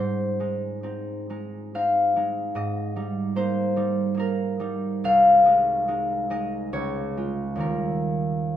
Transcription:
Already playing: G#2 D#4 C5
0.40 G#3 D#4
0.83 C4 D#4
1.30 G#3 D#4
1.74 C4 D#4 F5
2.16 G#3 D#4
2.55 G#2 D#5
2.96 G3 D#4
3.36 A#3 D#4 C5
3.76 G3 D#4
4.15 A#3 D#4
4.19 A#4
4.60 G3 D#4
5.04 C2 F5
5.45 G#3 D#4
5.88 G#3 D#4
6.30 G#3 D#4 D#5
6.73 C#2 C#5
7.17 G#3 F4
7.56 D#2 D#3 G3 D#4
7.60 A#4

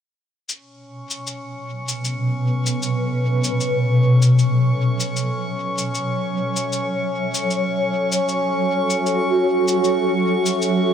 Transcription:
0.48 B2 C#4 C#6, shaker
0.74 A4
0.78 F#3
0.83 C#5
1.03 B4
1.10 shaker
1.27 shaker
1.70 E5
1.88 shaker
2.04 shaker
2.66 shaker
2.82 shaker
3.44 shaker
3.60 shaker
4.22 shaker
4.38 shaker
5.00 shaker
5.16 shaker
5.78 shaker
5.94 shaker
6.56 shaker
6.72 shaker
7.10 F#4
7.34 shaker
7.50 shaker
8.12 shaker
8.28 shaker
8.90 shaker
9.06 shaker
9.68 shaker
9.84 shaker
10.46 shaker
10.62 shaker

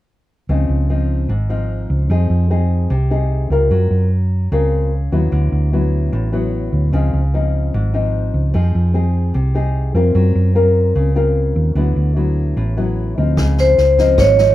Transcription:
0.49 C#2 C#3 F3 C4 D#4
0.69 C#2
0.90 F3 C4 D#4
1.29 G#1 G#2
1.49 F3 C4 D#4
1.90 C#2
2.10 F2 F3 C4 D#4 G#4
2.30 F2
2.50 C4 D#4 G#4
2.90 C2 C3
3.10 C4 D#4 G#4
3.50 C#2 C4 F4 A#4
3.71 F#2 F#3
3.91 F#2
4.52 C#2 C#3 C4 F4 A#4
5.12 D#2 F#3 B3 E4
5.32 D2 D3
5.52 D2
5.73 F#3 B3 E4
6.12 A1 A2
6.32 F#3 B3 E4
6.73 D2
6.92 C#2 C#3 F3 C4 D#4
7.13 C#2
7.34 F3 C4 D#4
7.74 G#1 G#2
7.94 F3 C4 D#4
8.34 C#2
8.54 F2 F3 C4 D#4 G#4
8.75 F2
8.94 C4 D#4 G#4
9.34 C2 C3
9.54 C4 D#4 G#4
9.94 F2 C4 F4 A#4
10.15 F#2 F#3
10.35 F#2
10.55 C4 F4 A#4
10.95 C#2 C#3
11.15 C4 F4 A#4
11.56 D#2
11.75 D2 D3 F#3 B3 E4
11.96 D2
12.16 F#3 B3 E4
12.57 A1 A2
12.77 F#3 B3 E4
13.17 D2 F3 C4 D#4
13.37 C#2 C#3, kick, cross-stick, snare
13.58 C5, snare
13.78 C#2, snare
13.98 F3 C4 D#4, kick, snare
14.18 G#1 G#2 C#5, kick, cross-stick, snare
14.38 F3 D#4, snare

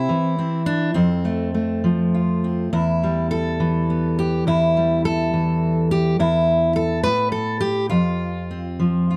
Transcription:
Already playing: C4 E4
0.09 E3
0.38 C4
0.66 D4
0.94 F2 C4
1.25 A3
1.54 A3
1.84 F3
2.14 F4
2.44 C4
2.73 E2 E4
3.03 G3
3.31 A4
3.60 E3
3.90 B3
4.19 G4
4.47 E2 E4
4.77 G3
5.05 A4
5.33 E3
5.91 G4
6.19 E2 E4
6.76 A4
7.03 A2 B4
7.32 A4
7.61 G4
7.90 F2 F4
8.51 C4
8.80 F3
9.11 F4

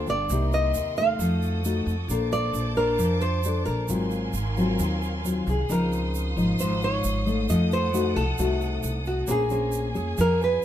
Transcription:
Already playing: D3 A#3 F4 A4 F5 G5 A5
0.07 G1 D5, shaker
0.29 C2 C3 A#3 D#4 G4 A#4 D#5 C6, shaker
0.52 D#5, shaker
0.74 D#2, shaker
0.97 A3 D#4 F5, shaker
1.19 F2 F3 F#4 A4 D#6, shaker
1.42 shaker
1.64 A3 D#4 F#4, shaker
1.86 F2, shaker
2.08 A#1 A#3 D4 A4 C5 A5 D6, shaker
2.32 D5, shaker
2.53 A#1, shaker
2.76 D4 A#4 C5, shaker
2.99 F2 F3, shaker
3.21 C5, shaker
3.43 D4 A4 C5, shaker
3.65 A#1 A#4, shaker
3.88 G#1 G#2 F#3 C4 F4 A#4 F5 G#5 C6, shaker
4.11 shaker
4.33 G#1, shaker
4.57 F#3 C4 F4, shaker
4.79 D#2 D#3, shaker
5.02 shaker
5.25 F#3 C4 F4, shaker
5.47 C2 G#4, shaker
5.69 C#2 C#3 F3 C4 D#4 A#4 F5 C6 D#6, shaker
5.92 shaker
6.15 shaker
6.36 G#1 F3 D#4, shaker
6.59 G#1 G#2 C5, shaker
6.82 C#5, shaker
7.04 G#1, shaker
7.26 A3 D#4, shaker
7.49 F2 F3 A4 D#5 F#5, shaker
7.72 C5, shaker
7.94 A3 D#4 F#4, shaker
8.16 C2 A4, shaker
8.38 C2 C3 A3 D#4 F#4, shaker
8.61 shaker
8.83 C2, shaker
9.06 F#4, shaker
9.27 A#1 A#3 C#4 G#4 C5 G#5, shaker
9.50 C#4 G#4 C5, shaker
9.72 shaker
9.95 F2 C#4 G#4, shaker
10.18 F2 F3 A#4, shaker
10.42 B4, shaker

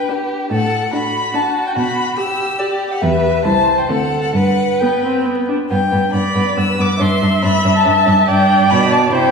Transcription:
Already playing: B4
0.09 D4 G4
0.50 A2 A4 F#5
0.93 D4 F#4 B5
1.34 D4 A5
1.67 G5
1.76 B2 B5
2.18 G4 E6
2.59 G4 D5
2.91 F#5
3.01 E2 G4 B4 E5
3.44 C2 E4 C5 A5
3.78 G5
3.89 D2 C4 A4 F#5
4.22 F#5
4.34 G2 B4 F#5
4.80 B3 G5
5.04 C4
5.25 B3
5.48 D4
5.70 G2 B3 G5
5.92 G2 B3
6.13 G2 B3 D5 B5
6.35 G2 B3
6.57 G2 B3 B4 E6
6.78 G2 B3 D6
6.99 G2 D4 E5 C6
7.22 G2 D4
7.43 G2 D4 B5
7.64 G2 D4
7.76 A5
7.85 G2 D4 A5
8.06 G2 D4
8.26 G2 D4 D5 G5
8.69 B2 D4 B5
8.92 A5
9.11 C3 E4 C5 G5

